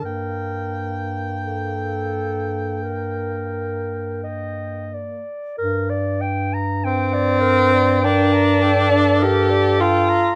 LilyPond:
<<
  \new Staff \with { instrumentName = "Clarinet" } { \time 4/4 \key g \minor \tempo 4 = 47 bes'4 a'4 bes'4 ees''8 d''8 | bes'16 d''16 g''16 bes''16 g''16 d''16 bes'16 d''16 g''16 bes''16 g''16 d''16 bes'16 d''16 g''16 bes''16 | }
  \new Staff \with { instrumentName = "Soprano saxophone" } { \time 4/4 \key g \minor g''2.~ g''8 r8 | r2 bes'8 a'4. | }
  \new Staff \with { instrumentName = "Tenor saxophone" } { \time 4/4 \key g \minor bes2.~ bes8. r16 | r4 c'4 d'4 g'8 f'8 | }
  \new Staff \with { instrumentName = "Bass clarinet" } { \clef bass \time 4/4 \key g \minor g,2.~ g,8. r16 | g,1 | }
>>